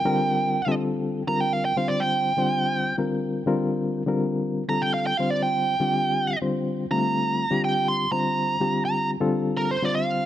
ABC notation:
X:1
M:7/8
L:1/16
Q:1/4=123
K:Gm
V:1 name="Lead electric guitar"
g6 z4 b g f g | f d g8 z4 | z8 z2 b g f g | f d g8 z4 |
b6 g2 c'2 b4- | b2 b2 z4 B c d f3 |]
V:2 name="Reed electric piano"
[D,G,CFB]4 z [D,G,CFA]4 z [D,G,CFB]4 | [D,G,CFc]4 z [D,G,CFc]4 z [D,G,CFB]4 | [D,G,CFB]4 z [D,G,CFB]4 z [D,G,CFA]4 | [D,G,CFc]4 z [D,G,CFG]4 z [D,G,CFc]4 |
[D,G,A,CF]4 z [D,G,CFG]4 z [D,G,CFc]4 | [D,G,CFG]4 z [D,G,CFA]4 z [D,G,CFc]4 |]